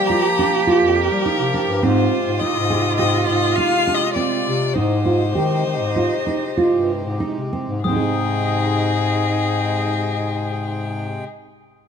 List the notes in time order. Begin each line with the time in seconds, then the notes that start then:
Already playing: F3 G3 A#3 G4
0.07 F4 A#5
0.39 D4
0.67 F4
0.82 F2
0.96 A#4
1.11 G3
1.26 D#4
1.40 C3
1.54 D4
1.68 G2
1.83 G#2 C3 G#3 C4 F4 C5
2.27 G#2
2.39 D#4 D#5
2.56 G#2
2.70 G#4
2.98 G#2 G4 D#5
3.27 G#2 D#5
3.56 D#4 F5 D#7
3.87 D4
3.95 D#5
4.14 C4 D5
4.46 C3
4.74 G#2 G#3 D#4 C5
5.05 F4
5.35 D#3 G4
5.66 D#3
5.81 G#2
5.96 F4
6.27 D#4
6.57 F4
6.74 G2
7.05 G#2
7.20 D#4
7.36 C3
7.53 C4
7.68 G#2
7.84 G#2 C3 G#3 D#4 G#4 G5 D#6
7.88 C4 D#4
7.96 G#4